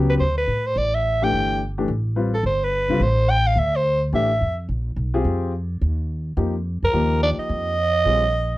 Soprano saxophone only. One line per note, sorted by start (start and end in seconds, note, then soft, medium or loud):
0.10 0.14 B4 medium
0.20 0.36 C5 medium
0.38 0.68 B4 medium
0.66 0.79 C5 medium
0.78 0.96 D5 medium
0.95 1.25 E5 medium
1.24 1.61 G5 medium
2.34 2.44 A4 medium
2.46 2.66 C5 medium
2.64 3.04 B4 medium
3.03 3.32 C5 medium
3.30 3.48 G5 loud
3.47 3.60 F5 medium
3.59 3.78 E5 medium
3.76 4.03 C5 medium
4.15 4.56 E5 medium
6.84 7.20 A#4 medium
7.23 7.30 D5 medium
7.39 8.58 D#5 loud